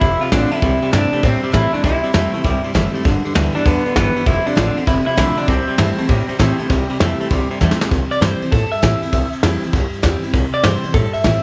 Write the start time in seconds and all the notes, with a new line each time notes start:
0.01 F1 F2 C3 E4, kick, ride
0.21 F2 C3 F4, muted upright bass stroke, ride
0.32 A1 F2 D3 F3 A3 C4 D4 F4, kick, snare, ride
0.51 F2 D3 C4 E4 F4, muted upright bass stroke, ride
0.62 C2 C3 G3, kick, ride
0.82 C3 G3, muted upright bass stroke, ride
0.92 G2 C3 E3 G3 A3 C4 D4 E4, snare, ride
1.12 C3 A3, muted upright bass stroke, ride
1.23 G2 A2 C3 G3 C4, kick, snare, ride
1.43 C3 G3, muted upright bass stroke, ride
1.52 A2 C3 E3 G3 A3 C4 E4, kick, snare, ride
1.73 C3 A3 C4 D4 E4, muted upright bass stroke, ride
1.84 C2 C3 G3 E4, kick, ride
2.03 C3 G3, muted upright bass stroke, ride
2.13 F2 C3 E3 G3 A3 C4 E4, snare, ride
2.33 C3 A3 C4 E4, muted upright bass stroke, ride
2.44 C2 G2 C3 G3, kick, snare, ride
2.64 C3 G3, muted upright bass stroke, ride
2.74 F#1 C3 E3 G3 A3 C4 E4, kick, snare, ride
2.94 C3 A3 C4 E4, muted upright bass stroke, ride
3.05 G1 G2 D3, kick, ride
3.24 G2 D3, muted upright bass stroke, ride
3.34 D2 G2 D3 E3 G3 B3 G4, snare, ride
3.54 G2 E3 B3 D4 G4, muted upright bass stroke, ride
3.65 E2 G2 A2 D3 B3, kick, ride
3.84 G2 D3, muted upright bass stroke, ride
3.96 G1 G2 E3 B3, kick, snare, ride
4.15 G2 E3, muted upright bass stroke, ride
4.26 F1 F2 C3 E4, kick, ride
4.46 F2 C3 D4, muted upright bass stroke, ride
4.55 A1 F2 D3 F3 A3 C4 F4, snare, ride
4.76 F2 D3 C4 F4, muted upright bass stroke, ride
4.87 F1 F2 C3 E4, kick, ride
5.06 F2 C3 E4, muted upright bass stroke, ride
5.17 B1 F2 D3 F3 A3 C4 F4, kick, snare, ride
5.37 F2 D3 C4 D4 F4, muted upright bass stroke, ride
5.48 C2 C3 G3 C4, kick, ride
5.67 C3 G3, muted upright bass stroke, ride
5.78 G2 C3 E3 G3 A3 C4 E4, snare, ride
5.98 C3 A3 C4 E4, muted upright bass stroke, ride
6.09 G2 A2 C3 G3, kick, snare, ride
6.28 C3 G3, muted upright bass stroke, ride
6.39 A2 C3 E3 G3 A3 C4 E4, kick, snare, ride
6.59 C3 A3 C4 E4, muted upright bass stroke, ride
6.69 C2 C3 G3, kick, ride
6.89 C3 G3, muted upright bass stroke, ride
6.99 F2 C3 E3 G3 A3 C4 E4, snare, ride
7.20 C3 A3, muted upright bass stroke, ride
7.30 C2 G2 C3 G3, kick, ride
7.50 C3 G3, muted upright bass stroke, ride
7.60 E2 C3 E3 G3 A3 C4 E4, kick, snare
7.71 snare
7.80 C3 A3 C4 E4, muted upright bass stroke, snare
7.91 C2 C3, kick, ride
8.11 D5, muted upright bass stroke, ride
8.21 G2 E3 G3 C4 E4 C5, snare, ride
8.41 C4 E4, muted upright bass stroke, ride
8.52 G2 A2 A4, kick, ride
8.71 E5, muted upright bass stroke, ride
8.82 A2 E3 G3 C4 E4, kick, snare, ride
9.02 C4 E4, muted upright bass stroke, ride
9.13 C2 C3, kick, ride
9.32 muted upright bass stroke, ride
9.43 F2 E3 G3 C4 E4, snare, ride
9.62 C4 E4, muted upright bass stroke, ride
9.73 C2 G2, kick, ride
9.93 muted upright bass stroke, ride
10.02 E2 E3 G3 C4 E4, kick, snare, ride
10.23 C4 E4, muted upright bass stroke, ride
10.33 C2 C3, kick, ride
10.53 D5, muted upright bass stroke, ride
10.63 G2 E3 G3 C4 E4 C5, snare, ride
10.83 C4 E4, muted upright bass stroke, ride
10.94 G2 A2 A4, kick, ride
11.13 E5, muted upright bass stroke, ride
11.24 A2 E3 G3 C4 E4, kick, snare, ride